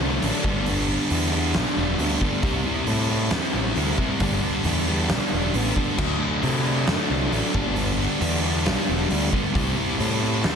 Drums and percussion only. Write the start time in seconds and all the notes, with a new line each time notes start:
0.22 open hi-hat
0.44 kick
0.66 open hi-hat
1.10 open hi-hat
1.54 snare, open hi-hat
1.99 open hi-hat
2.21 kick
2.43 kick, open hi-hat
2.87 open hi-hat
3.31 snare, open hi-hat
3.75 open hi-hat
3.98 kick
4.20 kick, open hi-hat
4.64 open hi-hat
5.09 snare, open hi-hat
5.54 open hi-hat
5.76 kick
5.98 kick, crash
6.43 open hi-hat
6.87 snare, open hi-hat
7.33 open hi-hat
7.54 kick
7.76 open hi-hat
8.21 open hi-hat
8.66 snare, open hi-hat
9.10 open hi-hat
9.33 kick
9.55 kick, open hi-hat
10.00 open hi-hat
10.44 snare, open hi-hat